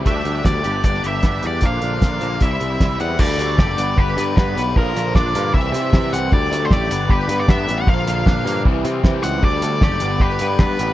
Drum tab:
CC |----------------|----------------|x---------------|----------------|
HH |x-x-x-x-x-x-x-x-|x-x-x-x-x-x-x-x-|--x---x---x---x-|--x---x---x---x-|
SD |----o----o--o---|----o-------o---|----o-------o---|----o-------o---|
BD |o---o---o---o---|o---o---o---o---|o---o---o---o---|o---o---o---o---|

CC |----------------|----------------|----------------|
HH |--x---x---x---x-|--x---x---x---x-|--x---x---x---x-|
SD |----o-------o---|----o-------o---|----o-------o---|
BD |o---o---o---o---|o---o---o---o---|o---o---o---o---|